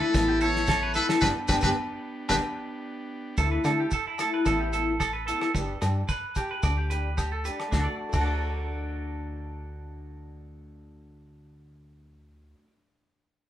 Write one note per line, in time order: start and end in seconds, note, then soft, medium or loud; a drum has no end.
0.00 0.11 D4 medium
0.00 1.20 E4 medium
0.00 0.43 A4 medium
0.00 1.21 A4 medium
0.00 0.14 B4 medium
0.14 1.00 A1 loud
0.14 0.30 E3 medium
0.14 0.31 B3 medium
0.14 1.21 B3 medium
0.14 0.31 E4 medium
0.14 muted clean electric guitar stroke loud
0.14 kick medium
0.14 snare medium
0.14 low agogo medium
0.14 maracas medium
0.28 0.40 G4 medium
0.41 0.59 B3 soft
0.41 0.57 E4 medium
0.41 0.67 A4 medium
0.41 0.94 C#5 loud
0.41 maracas medium
0.56 snare soft
0.67 0.81 A4 medium
0.67 kick medium
0.67 snare medium
0.67 low agogo medium
0.67 maracas medium
0.83 0.95 B4 medium
0.94 1.13 B3 soft
0.94 1.11 E4 medium
0.94 1.08 A4 medium
0.94 1.07 B4 loud
0.94 snare soft
0.94 maracas medium
1.09 1.22 A4 medium
1.09 snare medium
1.09 low agogo medium
1.21 1.32 G1 medium
1.21 1.31 B3 medium
1.21 3.36 B3 medium
1.21 1.31 D4 loud
1.21 1.31 D4 medium
1.21 3.37 D4 medium
1.21 1.31 G4 medium
1.21 3.36 G4 medium
1.21 1.28 B4 loud
1.21 1.31 B4 medium
1.21 kick medium
1.21 snare medium
1.21 low agogo medium
1.21 maracas loud
1.48 1.59 G1 loud
1.48 1.58 B3 medium
1.48 1.58 D4 loud
1.48 1.58 D4 medium
1.48 1.58 G4 loud
1.48 1.58 G4 medium
1.48 1.55 B4 loud
1.48 1.58 B4 medium
1.48 kick medium
1.48 snare medium
1.48 low agogo loud
1.48 maracas loud
1.61 1.72 G1 medium
1.61 1.72 B3 medium
1.61 1.72 D4 medium
1.61 1.71 D4 medium
1.61 1.71 G4 medium
1.61 1.72 G4 loud
1.61 1.71 B4 loud
1.61 1.69 B4 loud
1.61 kick medium
1.61 snare medium
1.61 low agogo loud
1.61 maracas loud
2.29 2.40 G1 loud
2.29 2.39 B3 loud
2.29 2.38 D4 loud
2.29 2.39 D4 medium
2.29 2.38 G4 medium
2.29 2.36 B4 medium
2.29 2.38 B4 medium
2.29 kick medium
2.29 snare medium
2.29 low agogo loud
2.29 maracas loud
3.37 3.59 D2 loud
3.37 3.54 E3 medium
3.37 3.55 A3 medium
3.37 3.55 E4 medium
3.37 3.51 A4 medium
3.37 kick medium
3.37 maracas medium
3.51 3.64 B4 medium
3.64 3.86 D3 medium
3.64 3.82 A3 soft
3.64 3.81 E4 medium
3.64 3.78 A4 medium
3.64 cross-stick medium
3.64 closed hi-hat soft
3.64 low agogo medium
3.64 maracas medium
3.80 3.92 G4 medium
3.91 4.06 A4 medium
3.91 kick medium
3.91 maracas medium
4.07 4.19 E4 medium
4.18 4.37 A3 soft
4.18 4.35 E4 medium
4.18 4.33 A4 medium
4.18 cross-stick medium
4.18 closed hi-hat medium
4.18 low agogo medium
4.18 maracas medium
4.34 4.46 B4 medium
4.45 5.32 A1 loud
4.45 4.63 E3 medium
4.45 4.63 B3 medium
4.45 4.63 E4 medium
4.45 4.60 A4 medium
4.45 kick medium
4.45 cross-stick medium
4.45 low agogo medium
4.45 maracas medium
4.60 4.73 G4 medium
4.72 4.91 B3 soft
4.72 4.89 E4 medium
4.72 4.99 A4 medium
4.72 closed hi-hat soft
4.72 maracas medium
5.00 5.13 A4 medium
5.00 kick medium
5.00 cross-stick medium
5.00 low agogo medium
5.00 maracas medium
5.13 5.26 B4 medium
5.27 5.46 B3 soft
5.27 5.44 E4 medium
5.27 5.40 A4 medium
5.27 closed hi-hat soft
5.27 maracas medium
5.41 5.54 A4 medium
5.41 cross-stick medium
5.41 low agogo medium
5.54 5.76 G1 medium
5.54 5.72 B3 medium
5.54 5.72 D4 medium
5.54 5.73 G4 medium
5.54 muted clean electric guitar stroke medium
5.54 kick medium
5.54 maracas medium
5.82 6.04 G2 medium
5.82 6.00 D4 soft
5.82 5.99 G4 soft
5.82 muted clean electric guitar stroke medium
5.82 cross-stick medium
5.82 closed hi-hat soft
5.82 low agogo medium
5.82 maracas medium
6.08 6.35 B4 medium
6.08 kick medium
6.08 maracas medium
6.35 6.50 G4 medium
6.35 6.53 G4 medium
6.35 kick medium
6.35 closed hi-hat soft
6.35 low agogo medium
6.35 maracas medium
6.51 6.63 B4 medium
6.63 7.50 D2 loud
6.63 6.77 D5 medium
6.63 kick medium
6.63 cross-stick medium
6.63 low agogo medium
6.63 maracas medium
6.77 6.90 G4 medium
6.90 7.09 D4 soft
6.90 7.08 G4 medium
6.90 7.16 B4 medium
6.90 closed hi-hat soft
6.90 maracas medium
7.17 7.31 G4 medium
7.17 kick medium
7.17 cross-stick medium
7.17 low agogo medium
7.17 maracas medium
7.32 7.45 A4 medium
7.45 7.63 D4 soft
7.45 7.62 G4 soft
7.45 7.71 B4 medium
7.45 closed hi-hat soft
7.45 maracas medium
7.60 cross-stick medium
7.60 low agogo medium
7.68 8.09 A3 medium
7.68 7.87 D4 medium
7.72 7.88 D2 medium
7.72 7.79 F#4 medium
7.72 kick medium
7.72 snare medium
7.72 low agogo medium
7.72 maracas medium
7.77 8.19 D4 medium
7.77 7.92 A4 medium
7.84 8.26 F#4 medium
7.84 7.94 D5 medium
8.09 12.55 A3 medium
8.09 12.55 D4 medium
8.09 maracas medium
8.13 12.55 D2 medium
8.13 12.59 F#4 medium
8.13 kick medium
8.13 crash medium
8.13 low agogo medium
8.19 12.65 D4 medium
8.19 12.63 A4 medium
8.25 12.72 F#4 medium
8.25 12.67 D5 medium